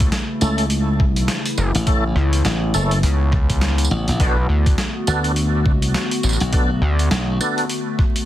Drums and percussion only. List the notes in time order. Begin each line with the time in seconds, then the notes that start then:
0.00 kick, closed hi-hat
0.12 snare, closed hi-hat
0.41 closed hi-hat, tambourine
0.58 closed hi-hat
0.70 closed hi-hat
1.00 kick
1.16 closed hi-hat
1.28 snare, closed hi-hat
1.45 closed hi-hat
1.57 tambourine
1.75 closed hi-hat
1.87 kick, closed hi-hat
2.16 cross-stick
2.33 closed hi-hat
2.45 snare, closed hi-hat
2.74 closed hi-hat, tambourine
2.91 closed hi-hat
3.03 closed hi-hat
3.32 kick, cross-stick
3.50 kick, closed hi-hat
3.61 snare, closed hi-hat
3.78 closed hi-hat
3.85 tambourine
4.08 closed hi-hat
4.20 kick, closed hi-hat
4.66 kick, closed hi-hat
4.78 snare, closed hi-hat
5.07 closed hi-hat, tambourine
5.24 closed hi-hat
5.36 closed hi-hat
5.66 kick
5.82 closed hi-hat
5.95 snare, closed hi-hat
6.11 closed hi-hat
6.23 tambourine
6.29 tambourine
6.33 tambourine
6.40 closed hi-hat
6.53 kick, closed hi-hat
6.99 closed hi-hat
7.11 snare, closed hi-hat
7.41 closed hi-hat, tambourine
7.58 closed hi-hat
7.70 closed hi-hat
7.99 kick, cross-stick
8.16 closed hi-hat